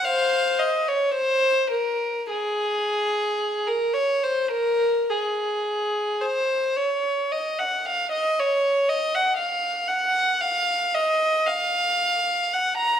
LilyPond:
\new Staff \with { instrumentName = "Violin" } { \time 4/4 \key f \phrygian \tempo 4 = 55 <c'' f''>8 ees''16 des''16 c''8 bes'8 aes'4~ aes'16 bes'16 des''16 c''16 | bes'8 aes'4 c''8 des''8 ees''16 ges''16 f''16 ees''16 des''8 | ees''16 ges''16 f''8 ges''8 f''8 ees''8 f''4 ges''16 bes''16 | }